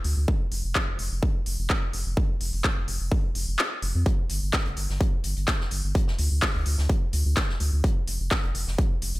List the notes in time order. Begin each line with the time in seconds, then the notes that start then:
0.04 D2, open hi-hat
0.17 D2
0.28 kick
0.52 F1, open hi-hat
0.64 F1
0.75 kick, clap
0.88 F1
0.99 F1, open hi-hat
1.11 F1
1.23 kick
1.46 F1, open hi-hat
1.59 F1
1.70 kick, clap
1.93 F1, open hi-hat
2.06 F1
2.17 kick
2.41 F1, open hi-hat
2.53 F1, open hi-hat
2.64 kick, clap
2.77 F1
2.88 F1, open hi-hat
3.00 F1
3.12 kick
3.35 F1, open hi-hat
3.48 F1
3.59 clap
3.82 F1, open hi-hat
3.95 F2
4.06 kick, closed hi-hat
4.30 G1, closed hi-hat, open hi-hat
4.42 G1
4.52 kick, snare, clap, closed hi-hat
4.66 G1, closed hi-hat
4.76 G1, closed hi-hat, open hi-hat
4.89 G1, snare
5.00 kick, closed hi-hat
5.24 G1, closed hi-hat, open hi-hat
5.37 G1, closed hi-hat
5.48 kick, snare, clap, closed hi-hat
5.60 snare
5.71 G1, closed hi-hat, open hi-hat
5.84 G1
5.95 kick, closed hi-hat
6.08 snare
6.19 D2, closed hi-hat, open hi-hat
6.31 D2
6.42 kick, snare, clap, open hi-hat
6.55 D2
6.65 D2, closed hi-hat, open hi-hat
6.78 D2, snare
6.89 kick, closed hi-hat
7.13 D2, closed hi-hat, open hi-hat
7.26 D2
7.37 kick, snare, clap, closed hi-hat
7.49 snare
7.60 D2, closed hi-hat, open hi-hat
7.73 D2
7.84 kick, closed hi-hat
8.07 F1, closed hi-hat, open hi-hat
8.20 F1
8.31 kick, snare, clap, closed hi-hat
8.43 F1, closed hi-hat
8.55 F1, closed hi-hat, open hi-hat
8.67 F1, snare
8.78 kick, closed hi-hat
9.02 F1, closed hi-hat, open hi-hat
9.14 F1, closed hi-hat